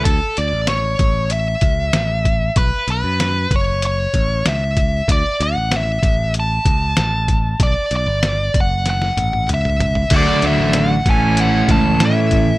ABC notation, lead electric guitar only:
X:1
M:4/4
L:1/8
Q:1/4=95
K:A
V:1 name="Lead electric guitar"
A d c2 e4 | B B2 c c2 e2 | d f e2 a4 | d d2 f f2 e2 |
d e f g f a e2 |]